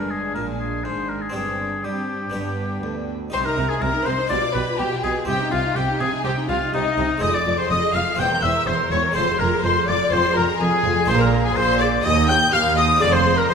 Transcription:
Already playing: G1 G2 G#3 D4 G#4 A#4 G#5
0.11 G#4
0.35 A#1 A#2 A#4
0.60 G#4
0.84 G#1 G#2 C5
1.09 A#4
1.22 G#4
1.30 C4 D4 G4
1.34 G1 G2 C4 D4 G#4 G5
1.84 G2 G3 C4 D4 G4 G5
2.30 G1 G2 B3 D4 G4 G5
2.34 G2 B3 D4
2.83 D2
3.30 C2 C3 C4 D#4 G4 C5 C6
3.45 D#4 A#4 A#5
3.57 C2 C3 C4
3.69 D#4 G#4 G#5
3.81 C2 C3 C4 A#4 A#5
3.95 D#4
4.06 C2 C3 C4 C5 C6
4.19 D#4
4.28 B1 B2 D4 F4 G4 D5 D6
4.43 F4
4.54 B1 B2 G4 B4 B5
4.68 F4
4.78 B1 B2 G4 G5
4.92 F4
5.03 B1 B2 G4 G#4 G#5
5.16 F4
5.25 C2 C3 C4 D#4 G4 G5
5.40 D#4
5.51 C2 C3 C4 F4 F5
5.64 D#4
5.76 C2 C3 C4 G4 G5
5.89 D#4
6.00 C2 C3 C4 G#4 G#5
6.13 D#4
6.24 C2 C3 C4 G4 G5
6.37 D#4
6.48 C2 C3 C4 F4 F5
6.61 D#4
6.73 C2 C3 C4 D#4 D#5
6.86 D#4
6.97 C2 C3 C4
7.10 D#4
7.18 G#3 C4 G#4
7.22 F1 F2 F4 D#5 D#6
7.34 G#4 D5 D6
7.46 F1 F2 F4
7.58 G#4 C5 C6
7.70 F1 F2 F4 D#5 D#6
7.83 G#4
7.94 F1 F2 F4 F5 F6
8.07 G#4
8.15 A#3 C4 G4 C5
8.19 E1 E2 G5 G6
8.31 A#4
8.43 E1 E2 C5 E5 E6
8.55 A#4
8.67 E1 E2 C5 C6
8.79 A#4
8.90 E1 E2 C5 C#5 C#6
9.04 A#4
9.12 F1 F2 G#3 C4 F4 C5 C6
9.16 F2 F4
9.28 G#4
9.39 F1 F2 F4 A#4 A#5
9.52 G#4
9.63 F1 F2 F4 C5 C6
9.76 G#4
9.87 F1 F2 F4 D5 D6
10.00 G#4
10.11 F1 F2 F4 C5 C6
10.25 G#4
10.35 F1 F2 F4 A#4 A#5
10.49 G#4
10.60 F1 F2 F4 G#4 G#5
10.73 G#4
10.84 F1 F2 F4
10.97 G#4
11.04 A#1 G#3 D4 F4 C5
11.08 A#2 G#4 C5 C6
11.19 A#4 A#5
11.33 G#4
11.44 G#4 G#5
11.55 A#1 A#2 G#4 C5 C6
11.79 G#4 D5 D6
12.02 D#2 A#3 G4 D#5 D#6
12.28 G4 G5 G6
12.52 D#2 G4 F5 F6
12.76 G4 D#5 D#6
12.97 C4 F4 G#4 D5
13.01 F1 F2 G#4 D5 D6
13.13 C5 C6
13.26 G#4
13.37 A#4 A#5
13.49 F1 F2 G#4 C5 C6

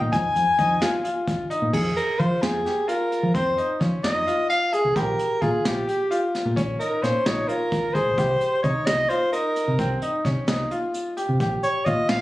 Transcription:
Already playing: F3 C4 D#4 G#4
0.01 A#2
0.12 F2 G#5, kick, closed hi-hat
0.36 F2, closed hi-hat
0.58 F2 D#4, kick, closed hi-hat
0.81 F4, snare, closed hi-hat
1.04 F4, closed hi-hat
1.27 kick, closed hi-hat
1.50 D#4, closed hi-hat
1.62 A#2
1.73 F2 G#4, kick, crash
1.97 A#4, closed hi-hat
2.19 F3 F4 C5, kick, closed hi-hat
2.42 F2 G#4, snare, closed hi-hat
2.65 G4, snare, closed hi-hat
2.88 F4 A#4, closed hi-hat
3.12 closed hi-hat
3.23 F3
3.34 F2 C4 C5, kick, closed hi-hat
3.57 D#4, closed hi-hat
3.80 F3 C#4, kick, snare, closed hi-hat
4.03 F2 D#4 D#5, snare, closed hi-hat
4.27 F4, closed hi-hat
4.50 F5, closed hi-hat
4.73 G#4, closed hi-hat
4.84 C2
4.96 A#1 G4 A#4, kick, closed hi-hat
5.19 closed hi-hat
5.42 A#2 F4 G#4, kick, closed hi-hat
5.65 A#1 G4, snare, closed hi-hat
5.87 G4, closed hi-hat
6.11 F4, closed hi-hat
6.35 snare, closed hi-hat
6.45 A#2
6.56 A#1 C#4, kick, closed hi-hat
6.79 D#4 A#4, closed hi-hat
7.02 A#2 C#4 C5, snare, closed hi-hat
7.26 A#1 D#4 C#5, snare, closed hi-hat
7.48 F4 A#4, closed hi-hat
7.72 kick, closed hi-hat
7.93 G#4 C5, kick, closed hi-hat
8.06 A#1
8.18 C2 G4, kick, closed hi-hat
8.41 closed hi-hat
8.63 C3 D#4 C#5, kick, closed hi-hat
8.86 C2 D#5, snare, closed hi-hat
9.09 F4 C5, closed hi-hat
9.32 D#4 A#4, closed hi-hat
9.56 closed hi-hat
9.68 C3
9.79 C2 C4, kick, closed hi-hat
10.02 D#4, closed hi-hat
10.25 C3 C#4, kick, snare, closed hi-hat
10.48 C2 D#4, snare, closed hi-hat
10.71 F4, closed hi-hat
10.94 closed hi-hat
11.17 G4, closed hi-hat
11.29 C3
11.40 A#1 G4, kick, closed hi-hat
11.63 C#5, closed hi-hat
11.85 A#2 F4 D#5, kick, closed hi-hat
12.09 A#1 F5, snare, closed hi-hat

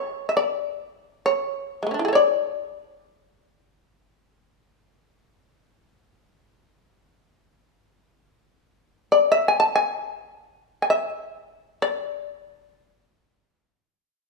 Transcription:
Already playing: C#5
0.29 E5
0.37 D5
1.26 C#5
1.83 G#3 A3
1.91 C#4 D4
1.99 E4
2.05 G#4 A4
2.13 C#5 D5
9.12 D5
9.32 E5
9.48 G#5
9.60 A5
9.76 G#5
10.82 G#5
10.90 E5
11.82 D5

